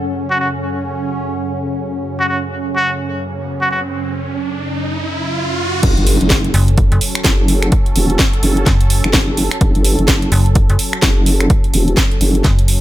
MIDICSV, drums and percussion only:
0, 0, Header, 1, 2, 480
1, 0, Start_track
1, 0, Key_signature, 3, "minor"
1, 0, Tempo, 472441
1, 165, Time_signature, 4, 2, 24, 8
1, 13011, End_track
2, 0, Start_track
2, 0, Title_t, "Drums"
2, 5924, Note_on_c, 9, 42, 85
2, 5924, Note_on_c, 9, 49, 100
2, 5925, Note_on_c, 9, 36, 116
2, 6026, Note_off_c, 9, 42, 0
2, 6026, Note_off_c, 9, 49, 0
2, 6027, Note_off_c, 9, 36, 0
2, 6068, Note_on_c, 9, 42, 38
2, 6164, Note_on_c, 9, 46, 104
2, 6170, Note_off_c, 9, 42, 0
2, 6265, Note_off_c, 9, 46, 0
2, 6308, Note_on_c, 9, 42, 37
2, 6401, Note_on_c, 9, 38, 123
2, 6404, Note_off_c, 9, 42, 0
2, 6404, Note_on_c, 9, 42, 86
2, 6405, Note_on_c, 9, 36, 119
2, 6502, Note_off_c, 9, 38, 0
2, 6506, Note_off_c, 9, 36, 0
2, 6506, Note_off_c, 9, 42, 0
2, 6548, Note_on_c, 9, 42, 38
2, 6644, Note_on_c, 9, 46, 92
2, 6650, Note_off_c, 9, 42, 0
2, 6746, Note_off_c, 9, 46, 0
2, 6788, Note_on_c, 9, 42, 36
2, 6884, Note_off_c, 9, 42, 0
2, 6884, Note_on_c, 9, 42, 81
2, 6885, Note_on_c, 9, 36, 118
2, 6986, Note_off_c, 9, 36, 0
2, 6986, Note_off_c, 9, 42, 0
2, 7029, Note_on_c, 9, 42, 55
2, 7124, Note_on_c, 9, 46, 104
2, 7130, Note_off_c, 9, 42, 0
2, 7225, Note_off_c, 9, 46, 0
2, 7268, Note_on_c, 9, 26, 79
2, 7360, Note_on_c, 9, 38, 126
2, 7364, Note_on_c, 9, 42, 84
2, 7365, Note_on_c, 9, 36, 114
2, 7369, Note_off_c, 9, 26, 0
2, 7462, Note_off_c, 9, 38, 0
2, 7465, Note_off_c, 9, 42, 0
2, 7467, Note_off_c, 9, 36, 0
2, 7603, Note_on_c, 9, 46, 99
2, 7705, Note_off_c, 9, 46, 0
2, 7747, Note_on_c, 9, 26, 60
2, 7747, Note_on_c, 9, 42, 53
2, 7843, Note_off_c, 9, 42, 0
2, 7843, Note_on_c, 9, 42, 80
2, 7845, Note_on_c, 9, 36, 125
2, 7849, Note_off_c, 9, 26, 0
2, 7945, Note_off_c, 9, 42, 0
2, 7946, Note_off_c, 9, 36, 0
2, 7987, Note_on_c, 9, 42, 40
2, 8084, Note_on_c, 9, 46, 107
2, 8089, Note_off_c, 9, 42, 0
2, 8185, Note_off_c, 9, 46, 0
2, 8228, Note_on_c, 9, 42, 38
2, 8320, Note_on_c, 9, 38, 127
2, 8324, Note_off_c, 9, 42, 0
2, 8324, Note_on_c, 9, 42, 84
2, 8325, Note_on_c, 9, 36, 126
2, 8422, Note_off_c, 9, 38, 0
2, 8426, Note_off_c, 9, 36, 0
2, 8426, Note_off_c, 9, 42, 0
2, 8468, Note_on_c, 9, 42, 38
2, 8563, Note_on_c, 9, 46, 95
2, 8570, Note_off_c, 9, 42, 0
2, 8665, Note_off_c, 9, 46, 0
2, 8707, Note_on_c, 9, 42, 36
2, 8800, Note_on_c, 9, 38, 64
2, 8804, Note_off_c, 9, 42, 0
2, 8804, Note_on_c, 9, 42, 82
2, 8805, Note_on_c, 9, 36, 123
2, 8901, Note_off_c, 9, 38, 0
2, 8905, Note_off_c, 9, 42, 0
2, 8906, Note_off_c, 9, 36, 0
2, 8947, Note_on_c, 9, 42, 51
2, 9043, Note_on_c, 9, 46, 113
2, 9048, Note_off_c, 9, 42, 0
2, 9145, Note_off_c, 9, 46, 0
2, 9187, Note_on_c, 9, 26, 76
2, 9187, Note_on_c, 9, 42, 37
2, 9279, Note_on_c, 9, 38, 127
2, 9283, Note_off_c, 9, 42, 0
2, 9283, Note_on_c, 9, 42, 82
2, 9285, Note_on_c, 9, 36, 125
2, 9289, Note_off_c, 9, 26, 0
2, 9381, Note_off_c, 9, 38, 0
2, 9384, Note_off_c, 9, 42, 0
2, 9386, Note_off_c, 9, 36, 0
2, 9524, Note_on_c, 9, 46, 103
2, 9625, Note_off_c, 9, 46, 0
2, 9667, Note_on_c, 9, 26, 61
2, 9667, Note_on_c, 9, 42, 54
2, 9763, Note_off_c, 9, 42, 0
2, 9763, Note_on_c, 9, 42, 75
2, 9764, Note_on_c, 9, 36, 123
2, 9768, Note_off_c, 9, 26, 0
2, 9865, Note_off_c, 9, 42, 0
2, 9866, Note_off_c, 9, 36, 0
2, 9907, Note_on_c, 9, 42, 38
2, 10003, Note_on_c, 9, 46, 112
2, 10009, Note_off_c, 9, 42, 0
2, 10104, Note_off_c, 9, 46, 0
2, 10147, Note_on_c, 9, 42, 36
2, 10240, Note_on_c, 9, 38, 124
2, 10243, Note_off_c, 9, 42, 0
2, 10243, Note_on_c, 9, 42, 77
2, 10244, Note_on_c, 9, 36, 127
2, 10341, Note_off_c, 9, 38, 0
2, 10345, Note_off_c, 9, 42, 0
2, 10346, Note_off_c, 9, 36, 0
2, 10387, Note_on_c, 9, 42, 37
2, 10483, Note_on_c, 9, 46, 98
2, 10489, Note_off_c, 9, 42, 0
2, 10585, Note_off_c, 9, 46, 0
2, 10627, Note_on_c, 9, 42, 36
2, 10723, Note_off_c, 9, 42, 0
2, 10723, Note_on_c, 9, 42, 75
2, 10724, Note_on_c, 9, 36, 125
2, 10825, Note_off_c, 9, 42, 0
2, 10826, Note_off_c, 9, 36, 0
2, 10867, Note_on_c, 9, 42, 51
2, 10963, Note_on_c, 9, 46, 115
2, 10969, Note_off_c, 9, 42, 0
2, 11064, Note_off_c, 9, 46, 0
2, 11107, Note_on_c, 9, 26, 78
2, 11107, Note_on_c, 9, 42, 35
2, 11199, Note_on_c, 9, 38, 126
2, 11203, Note_off_c, 9, 42, 0
2, 11203, Note_on_c, 9, 42, 81
2, 11204, Note_on_c, 9, 36, 121
2, 11208, Note_off_c, 9, 26, 0
2, 11301, Note_off_c, 9, 38, 0
2, 11305, Note_off_c, 9, 42, 0
2, 11306, Note_off_c, 9, 36, 0
2, 11444, Note_on_c, 9, 46, 100
2, 11545, Note_off_c, 9, 46, 0
2, 11588, Note_on_c, 9, 26, 56
2, 11588, Note_on_c, 9, 42, 52
2, 11684, Note_off_c, 9, 42, 0
2, 11684, Note_on_c, 9, 36, 126
2, 11684, Note_on_c, 9, 42, 79
2, 11689, Note_off_c, 9, 26, 0
2, 11785, Note_off_c, 9, 42, 0
2, 11786, Note_off_c, 9, 36, 0
2, 11828, Note_on_c, 9, 42, 36
2, 11924, Note_on_c, 9, 46, 107
2, 11929, Note_off_c, 9, 42, 0
2, 12025, Note_off_c, 9, 46, 0
2, 12068, Note_on_c, 9, 42, 35
2, 12161, Note_on_c, 9, 38, 118
2, 12164, Note_off_c, 9, 42, 0
2, 12164, Note_on_c, 9, 36, 124
2, 12164, Note_on_c, 9, 42, 81
2, 12262, Note_off_c, 9, 38, 0
2, 12266, Note_off_c, 9, 36, 0
2, 12266, Note_off_c, 9, 42, 0
2, 12309, Note_on_c, 9, 42, 34
2, 12404, Note_on_c, 9, 46, 93
2, 12410, Note_off_c, 9, 42, 0
2, 12506, Note_off_c, 9, 46, 0
2, 12548, Note_on_c, 9, 42, 36
2, 12641, Note_on_c, 9, 38, 61
2, 12644, Note_off_c, 9, 42, 0
2, 12644, Note_on_c, 9, 36, 122
2, 12644, Note_on_c, 9, 42, 78
2, 12742, Note_off_c, 9, 38, 0
2, 12746, Note_off_c, 9, 36, 0
2, 12746, Note_off_c, 9, 42, 0
2, 12788, Note_on_c, 9, 42, 50
2, 12884, Note_on_c, 9, 46, 111
2, 12890, Note_off_c, 9, 42, 0
2, 12986, Note_off_c, 9, 46, 0
2, 13011, End_track
0, 0, End_of_file